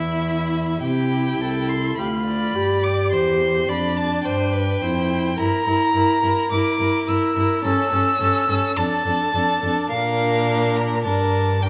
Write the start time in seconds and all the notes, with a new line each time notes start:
Already playing: E2 E4 E5
0.82 C3 E4 G4 G5
1.41 C2 A4
1.69 C6
1.97 D2 F4 G4 B5
2.27 D5
2.55 G2 G4
2.83 G4 D6
3.11 E2 C5 C6
3.68 F2 D4 D5 B5
3.97 A5
4.24 G2 C5 G5
4.53 B4
4.82 F2 E4 C5
5.37 G2 E4 A#4 A#5
5.65 G2 E4 A#4
5.94 G2 E4 A#4
6.23 G2 E4 A#4
6.51 G2 E4 A#4 D6
6.79 G2 E4 A#4
7.07 G2 E4 A#4 E6
7.36 G2 E4 A#4
7.63 G2 C#4 A4 E6
7.92 G2 C#4 A4
8.20 G2 C#4 A4
8.49 G2 C#4 A4
8.76 F2 D4 A4 A5
9.05 F2 D4 A4
9.34 F2 D4 A4
9.62 F2 D4 A4
9.90 A#2 D4 A#4 F5
10.76 A#5
11.04 G2 D4 A#4 A5
11.62 D4 A#4 G5